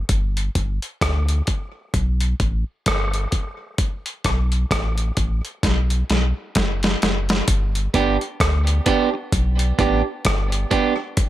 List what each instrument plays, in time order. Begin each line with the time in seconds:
0.09 sub bass G1, kick, closed hi-hat
0.37 closed hi-hat
0.55 sub bass G1, kick, closed hi-hat
0.82 closed hi-hat
1.01 sub bass D2, kick, cross-stick, closed hi-hat
1.28 closed hi-hat
1.47 kick, closed hi-hat
1.94 sub bass B1, kick, closed hi-hat
2.20 closed hi-hat
2.40 sub bass A1, kick, closed hi-hat
2.86 sub bass G1, kick, cross-stick, closed hi-hat
3.14 closed hi-hat
3.32 kick, closed hi-hat
3.78 kick, closed hi-hat
4.06 closed hi-hat
4.24 sub bass B1, kick, cross-stick, closed hi-hat
4.52 closed hi-hat
4.71 sub bass A1, kick, cross-stick, closed hi-hat
4.98 closed hi-hat
5.17 sub bass A1, kick, closed hi-hat
5.45 closed hi-hat
5.63 sub bass B1, kick, snare, closed hi-hat
5.90 closed hi-hat
6.10 sub bass B1, snare, closed hi-hat
6.55 sub bass F#1, kick, snare, closed hi-hat
6.83 snare, closed hi-hat
7.02 sub bass F#1, snare, closed hi-hat
7.29 snare, closed hi-hat
7.48 sub bass G1, kick, closed hi-hat
7.75 closed hi-hat
7.94 sub bass G1, clean electric guitar B3 D4 G4, kick, closed hi-hat
8.21 closed hi-hat
8.40 sub bass D2, kick, cross-stick, closed hi-hat
8.67 closed hi-hat
8.86 clean electric guitar B3 D4 G4, kick, closed hi-hat
9.14 muted clean electric guitar stroke
9.32 sub bass B1, kick, closed hi-hat
9.59 closed hi-hat
9.79 sub bass A1, clean electric guitar B3 D4 G4, kick, closed hi-hat
10.25 sub bass G1, kick, cross-stick, closed hi-hat
10.52 closed hi-hat
10.71 clean electric guitar B3 D4 G4, kick, closed hi-hat
11.17 kick, closed hi-hat